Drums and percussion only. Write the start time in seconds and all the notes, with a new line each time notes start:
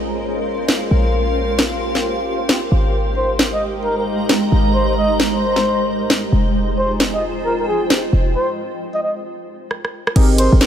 0.69 snare
1.59 snare
1.95 snare
2.49 snare
3.39 snare
4.29 snare
5.20 snare
5.56 snare
6.10 snare
7.00 snare
7.90 snare
9.71 cross-stick
9.85 cross-stick
10.07 cross-stick
10.16 kick, closed hi-hat, crash
10.38 open hi-hat
10.61 snare